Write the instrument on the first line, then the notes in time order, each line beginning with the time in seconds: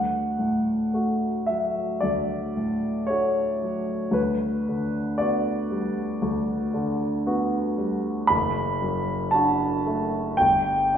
grand piano
Already playing: D2 F#5
0.39 A2
0.94 A3 F#4
1.47 F#3 E5
2.01 D2 D5
2.57 A2
3.07 A3 F#4 C#5
3.62 F#3
4.11 D2 B4
4.69 D3
5.18 B3 F#4 D5
5.71 G3
6.22 D2
6.74 D3
7.26 B3 F#4
7.78 G3
8.27 F#1 B5
8.82 F#2
9.31 D4 F#4 A5
9.86 A3
10.37 G1 G5
10.94 D4 E4